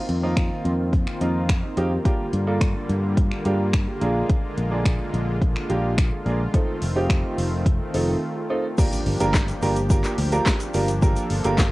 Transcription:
Already playing: D#3 A#3 C4 F4
0.09 F2, closed hi-hat
0.23 A#3 C4 D#4 F4
0.37 finger snap, kick, closed hi-hat
0.65 F2, closed hi-hat
0.93 kick, closed hi-hat
1.07 finger snap
1.21 F2 A#3 C4 D#4 F4, closed hi-hat
1.49 finger snap, kick, closed hi-hat
1.63 D#4 F4
1.77 F2 A#3 C4 D#4 G4, closed hi-hat
2.05 D3 G3 A#3 D4 F4 G4, kick, closed hi-hat
2.33 G2, closed hi-hat
2.47 A#3 D4 F4 A4
2.61 finger snap, kick, closed hi-hat
2.89 G2, closed hi-hat
3.17 kick, closed hi-hat
3.31 finger snap
3.45 G2 A#3 D4 F4 G4, closed hi-hat
3.73 finger snap, kick, closed hi-hat
3.87 F4 G4
4.01 A#1 D3 G#3 A#3 D4 F4 G#4, closed hi-hat
4.29 kick, closed hi-hat
4.58 A#1, closed hi-hat
4.71 A#3 D4 F4 G#4
4.85 finger snap, kick, closed hi-hat
5.14 A#1, closed hi-hat
5.42 kick, closed hi-hat
5.56 finger snap
5.69 A#1 A#3 D4 F4 G4, closed hi-hat
5.98 finger snap, kick, closed hi-hat
6.12 F4 G#4
6.26 A#1 A#3 D4 F4 G#4, closed hi-hat
6.54 D#3 A3 C4 D#4 F4 A4, kick, closed hi-hat
6.82 F1, open hi-hat
6.96 C4 D#4 F4 G4
7.10 finger snap, kick, closed hi-hat
7.38 F1, open hi-hat
7.66 kick, closed hi-hat
7.94 F1 C4 D#4 F4 A4, open hi-hat
8.36 F4 A4
8.50 C4 D#4 F4 A4
8.78 F3 A#3 D4 F4 G4 A#4, kick, crash, impact, shaker
8.92 closed hi-hat, shaker
9.06 G1, open hi-hat
9.20 G1 A#3 D4 F4 G4 A#4, closed hi-hat, shaker
9.34 kick, snare, clap, shaker
9.48 closed hi-hat, shaker
9.62 G1 A#3 D4 F4 G4 A#4, open hi-hat, shaker
9.76 closed hi-hat, shaker
9.90 A#3 D4 F4 G4 A#4, kick, shaker
10.04 clap, closed hi-hat, shaker
10.18 D2, open hi-hat
10.32 A#3 D4 F4 G4 A#4, closed hi-hat, shaker
10.46 kick, snare, clap, shaker
10.60 closed hi-hat, shaker
10.74 G1 A#3 D4 F4 G4 A#4, open hi-hat, shaker
10.88 closed hi-hat, shaker
11.02 A#3 D4 F4 G4 A4 A#4, kick, shaker
11.16 closed hi-hat, shaker
11.30 G1, open hi-hat
11.44 G1 A#3 D4 F4 G4 A#4, closed hi-hat, shaker
11.58 kick, snare, clap, shaker

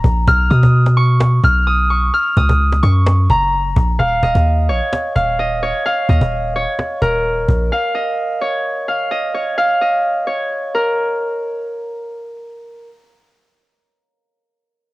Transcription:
Already playing: A#5 C#6
0.04 A#1, cajon bass
0.28 B1 F6, cajon bass
0.50 B2 D#6, cajon bass
0.63 cajon bass
0.74 cajon slap
0.86 cajon slap
0.97 C#6, cajon slap
1.20 cajon slap
1.44 B1 F6, cajon bass
1.52 cajon slap
1.59 cajon slap
1.67 D#6, cajon slap
1.90 C#6
2.14 F6, cajon slap
2.37 C#2 D#6, cajon bass
2.45 cajon slap
2.49 cajon bass, cajon slap
2.60 cajon slap
2.72 cajon slap
2.83 F#2 C#6, cajon bass
3.07 cajon slap
3.30 F#1 A#5, cajon bass
3.42 cajon slap
3.53 cajon slap
3.76 A#1, cajon bass, cajon slap
3.99 D#1 F5, cajon bass
4.23 D#1 D#5, cajon bass
4.35 D#2, cajon bass
4.46 cajon slap
4.69 A#1 C#5, cajon slap
4.93 cajon slap
5.15 D#1 F5, cajon bass
5.24 cajon slap
5.31 cajon slap
5.39 D#5, cajon slap
5.63 C#5
5.86 F5, cajon slap
6.09 D#2 D#5, cajon bass
6.21 D#1, cajon bass
6.32 cajon slap
6.56 C#5
6.79 cajon slap
7.02 D#1 A#4, cajon bass
7.25 cajon slap
7.48 A#1, cajon bass
7.72 F5
7.95 D#5
8.41 C#5
8.88 F5
9.11 D#5
9.34 C#5
9.58 F5
9.81 D#5
10.27 C#5
10.75 A#4

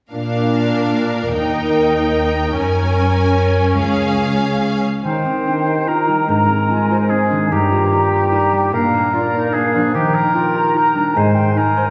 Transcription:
0.12 A#2 D4 A#4 F5
1.36 D#2 D#4 G5
2.58 F#2 C#4 A#4 G#5
3.80 C#2 G#4 F5
5.03 D#3 D#4 C5 G5
5.25 C4 D#4
5.46 D4 A#4
5.66 D#4 G4
5.87 D#4 F4 A#4 A#5
6.07 G3 D#4
6.28 G#2 G#3 D4 A#4 A#5
6.49 G#3 C4
6.69 D#4 F4 G#5
6.91 D#4 C5
7.10 G#3 C4 G#4 G#5
7.31 D#3 D4
7.51 G2 G3 D#4 G4 A#5
7.72 A#3 F4
7.92 D#4
8.12 A#4
8.31 A#3 D#4 A#5
8.53 G3 G5
8.72 A#2 A#3 D4 A#4 F5
8.94 A#3
9.13 D4 F4 D5
9.34 D#4 A#4
9.53 A#3 D4 G#4 F5
9.75 F3 D4
9.93 D#3 D#4 G4 G5
10.14 D#4 A#4
10.34 F4 A#4 G5
10.54 G4 A#5
10.75 D#4 A#4
10.95 G3 D4
11.14 G#2 G#3 D#4 C5 G#5
11.34 G#3 G5
11.55 D#4 A#4 G#5
11.77 C5

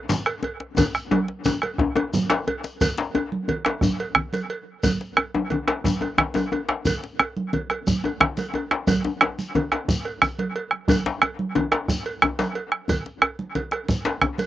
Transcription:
0.09 djembe slap, high conga, low conga, shekere
0.26 bombo rim, cowbell, djembe slap
0.43 bombo rim, cowbell, djembe slap, djembe tone
0.60 bombo rim, djembe slap
0.77 bombo rim, bombo low, cowbell, djembe tone, djembe bass, low conga, shekere
0.93 bombo rim, djembe tone, shekere
1.11 cowbell, djembe tone, high conga
1.28 djembe slap
1.45 bombo rim, cowbell, djembe slap, djembe tone, high conga, low conga, shekere
1.62 bombo rim, cowbell, djembe slap, high conga
1.78 bombo rim, bombo low, djembe slap, djembe tone, djembe bass
1.96 cowbell, djembe slap, djembe tone, high conga
2.14 high conga, low conga, shekere
2.30 bombo rim, cowbell, djembe slap
2.47 bombo rim, cowbell, djembe tone, high conga
2.64 djembe slap, shekere
2.81 bombo low, cowbell, high conga, djembe bass, low conga, shekere
2.98 djembe slap
3.15 cowbell, djembe slap, djembe tone
3.32 high conga
3.48 cowbell, djembe bass, low conga
3.65 bombo rim, cowbell, djembe slap, high conga
3.81 bombo rim, bombo low, djembe tone, high conga, shekere
3.99 cowbell, djembe slap
4.15 bombo rim, djembe tone, djembe bass, low conga
4.33 cowbell, djembe slap, high conga, shekere
4.50 cowbell
4.83 bombo low, cowbell, high conga, low conga, djembe bass, shekere
5.01 djembe slap
5.17 bombo rim, cowbell, djembe slap, djembe tone
5.35 djembe tone, high conga
5.50 cowbell, djembe tone, djembe bass, low conga
5.68 bombo rim, cowbell, djembe slap, high conga
5.84 bombo rim, bombo low, high conga, djembe tone, shekere
6.01 cowbell, djembe slap, djembe tone
6.18 bombo rim, djembe slap, djembe tone, djembe bass, low conga
6.34 cowbell, djembe slap, djembe tone, high conga, shekere
6.52 cowbell, djembe tone
6.69 bombo rim, djembe slap
6.85 bombo low, cowbell, high conga, low conga, djembe bass, shekere
7.04 djembe slap
7.19 bombo rim, cowbell, djembe slap, djembe tone
7.37 high conga
7.53 cowbell, low conga, djembe bass
7.70 bombo rim, cowbell, djembe slap, high conga
7.87 bombo rim, bombo low, high conga, shekere
8.04 cowbell, djembe slap, djembe tone
8.20 bombo rim, djembe slap, djembe tone, low conga, djembe bass
8.37 cowbell, djembe slap, high conga, shekere
8.54 cowbell, djembe tone
8.71 bombo rim, djembe slap
8.87 bombo low, cowbell, high conga, low conga, djembe bass, shekere
9.04 djembe slap, djembe tone
9.21 bombo rim, cowbell, djembe slap, high conga, djembe tone
9.39 djembe slap, high conga, shekere
9.55 cowbell, djembe tone, djembe bass, low conga
9.72 bombo rim, cowbell, djembe slap
9.88 bombo low, high conga, shekere
10.05 bombo rim, cowbell, djembe slap
10.22 bombo rim, djembe tone, low conga, djembe bass, shekere
10.39 cowbell, djembe slap, high conga
10.56 cowbell, djembe slap
10.71 bombo rim, djembe slap, high conga
10.88 bombo low, cowbell, high conga, djembe tone, low conga, djembe bass, shekere
11.06 djembe slap
11.22 bombo rim, cowbell, djembe slap, djembe tone
11.39 high conga
11.55 cowbell, djembe tone, djembe bass, low conga
11.72 bombo rim, cowbell, djembe slap
11.88 bombo rim, bombo low, high conga, shekere
12.06 cowbell, djembe slap
12.22 bombo rim, djembe tone, low conga, djembe bass
12.39 cowbell, djembe slap, high conga, shekere
12.55 cowbell
12.72 bombo rim
12.88 bombo low, cowbell, high conga, djembe bass, low conga, shekere
13.06 djembe slap
13.22 bombo rim, cowbell, djembe tone
13.39 high conga
13.55 cowbell, djembe bass, low conga
13.71 bombo rim, cowbell, djembe slap, high conga
13.88 bombo rim, bombo low, high conga, shekere
14.05 cowbell, djembe slap
14.21 bombo rim, djembe tone, low conga, djembe bass
14.38 cowbell, djembe slap, high conga, shekere

